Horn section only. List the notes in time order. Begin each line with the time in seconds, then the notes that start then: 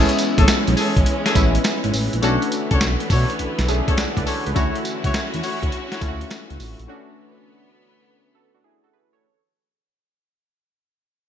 Already playing: C#4 G#4 A4
0.38 C#4 G#4 A4
0.77 C#4 G#4 A4
1.26 C#4 G#4 A4
2.23 D4 A4 C#5
2.71 D4 A4 C#5
3.10 D4 A4 C#5
3.88 D4 A4 C#5
4.26 D4 A4 C#5
4.56 E4 F#4 C#5
5.04 E4 F#4 C#5
5.43 E4 F#4 C#5
5.92 E4 F#4 C#5